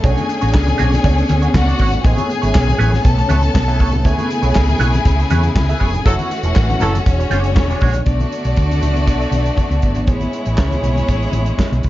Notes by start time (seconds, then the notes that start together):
Already playing: A3
0.03 B1 A3 B3 C#4 D4 F#4 G#4 C#5 G#5, kick, closed hi-hat, muted conga
0.18 closed hi-hat, high conga
0.28 muted clean electric guitar stroke, closed hi-hat
0.41 A1 A3 D4 F#4 C#5, closed hi-hat
0.54 C#2, kick, snare, clap, muted conga
0.66 muted clean electric guitar stroke, closed hi-hat, high conga, low conga
0.78 B1 A3 D4 F#4 C#5, closed hi-hat, low conga
0.92 muted clean electric guitar stroke, snare, closed hi-hat, high conga
1.04 C#2 A3 D4 F#4 C#5, kick, closed hi-hat, muted conga, high conga
1.17 muted clean electric guitar stroke, closed hi-hat
1.29 D2, muted clean electric guitar stroke, closed hi-hat, muted conga, high conga
1.42 A3 D4 F#4 C#5, closed hi-hat
1.54 C#2 F#4 F#5, muted clean electric guitar stroke, kick, snare, clap, muted conga, high conga
1.67 A3 D4 F#4 D5, closed hi-hat
1.79 G#1 A3 D4 F#4 C#5, kick, open hi-hat, muted conga
1.92 muted clean electric guitar stroke, closed hi-hat, low conga
2.04 A1 A2 A3 B3 C#4 E4 G#4 C#5 G#5, kick, closed hi-hat, muted conga
2.17 closed hi-hat, high conga
2.29 muted clean electric guitar stroke, closed hi-hat
2.42 G#1 B3 E4 G#4 C#5, closed hi-hat
2.55 B1, kick, snare, clap
2.67 muted clean electric guitar stroke, closed hi-hat, high conga, low conga
2.79 A1 B3 E4 G#4 C#5, closed hi-hat, muted conga, low conga
2.93 muted clean electric guitar stroke, snare, closed hi-hat, high conga
3.04 B1 A4 A5, muted clean electric guitar stroke, kick, closed hi-hat, muted conga, high conga
3.18 muted clean electric guitar stroke, closed hi-hat
3.29 C#2 B3 E4 G#4 C#5, closed hi-hat, high conga
3.42 muted clean electric guitar stroke, closed hi-hat
3.54 B1, muted clean electric guitar stroke, kick, snare, clap, muted conga, high conga
3.68 B3 E4 G#4 E5, closed hi-hat
3.79 C2 B3 E4 G#4 C#5, kick, open hi-hat, muted conga
3.92 muted clean electric guitar stroke, closed hi-hat, low conga
4.05 C#2 C#3 B3 E4 G#4 C#5 G#5, kick, closed hi-hat
4.17 closed hi-hat, high conga
4.29 muted clean electric guitar stroke, closed hi-hat
4.42 B1 B3 E4 G#4 C#5, closed hi-hat
4.55 C#2, kick, snare, clap, muted conga
4.68 muted clean electric guitar stroke, closed hi-hat, high conga, low conga
4.79 B1 B3 E4 G#4 C#5, closed hi-hat, low conga
4.93 muted clean electric guitar stroke, closed hi-hat, high conga
5.05 C#2, muted clean electric guitar stroke, kick, closed hi-hat, high conga
5.19 muted clean electric guitar stroke, closed hi-hat
5.30 E2 B3 E4 G#4 C#5, closed hi-hat, muted conga, high conga
5.43 muted clean electric guitar stroke, closed hi-hat
5.55 C#2 G#4 G#5, muted clean electric guitar stroke, kick, snare, clap, muted conga, high conga
5.69 B3 E4 G#4 E5, closed hi-hat
5.80 F1 B3 E4 G#4 C#5, kick, open hi-hat, muted conga
5.93 muted clean electric guitar stroke, closed hi-hat, low conga
6.04 F#1 E3 F#3 A3 C#4 E4 F#4 A4 C#5 F#5, kick, closed hi-hat, muted conga
6.19 closed hi-hat, high conga
6.31 muted clean electric guitar stroke, closed hi-hat, muted conga
6.43 E1 C#4 E4 A4 C#5, closed hi-hat
6.55 A1, kick, snare, clap, muted conga
6.69 muted clean electric guitar stroke, closed hi-hat, high conga, low conga
6.80 F#1 F#3 C#4 E4 A4 C#5, closed hi-hat, muted conga, low conga
6.94 muted clean electric guitar stroke, closed hi-hat, high conga
7.04 E1 D3 G#3 C#4 C#5, muted clean electric guitar stroke, kick, closed hi-hat, high conga
7.20 muted clean electric guitar stroke, closed hi-hat
7.30 F#1 G#3 D4 F#4 C#5, closed hi-hat, high conga
7.44 muted clean electric guitar stroke, closed hi-hat
7.55 E1, muted clean electric guitar stroke, kick, snare, clap, muted conga, high conga
7.70 G#3 D4 F#4 D5, closed hi-hat
7.81 A#1 G#3 D4 F#4 C#5, kick, open hi-hat, muted conga
7.93 muted clean electric guitar stroke, closed hi-hat, low conga
8.06 B1 D3 A3 B3 D4 F#4 D5, kick, closed hi-hat, muted conga
8.20 closed hi-hat, high conga
8.32 closed hi-hat
8.44 B1, closed hi-hat
8.56 D2, kick, closed hi-hat
8.70 closed hi-hat, high conga
8.81 C#2, closed hi-hat, low conga
8.96 closed hi-hat, high conga
9.07 B1, kick, closed hi-hat, muted conga
9.22 closed hi-hat
9.31 B1, closed hi-hat, muted conga, high conga
9.45 closed hi-hat
9.57 kick, closed hi-hat, muted conga, high conga
9.70 C#2, closed hi-hat
9.82 G1, kick, closed hi-hat
9.94 G#1, closed hi-hat, low conga
10.06 A1 A2 G#3 C#4 E4 C#5, kick, closed hi-hat, muted conga
10.20 closed hi-hat, high conga
10.33 closed hi-hat, muted conga
10.45 A1, closed hi-hat
10.57 C#2, kick, snare, clap
10.71 closed hi-hat, high conga
10.82 B1, closed hi-hat, low conga
10.95 closed hi-hat, high conga
11.08 A1, kick, closed hi-hat
11.22 closed hi-hat
11.32 A1, closed hi-hat, muted conga, high conga
11.46 closed hi-hat
11.58 kick, snare, clap, muted conga, high conga
11.72 B1, closed hi-hat
11.83 B1, kick, closed hi-hat, muted conga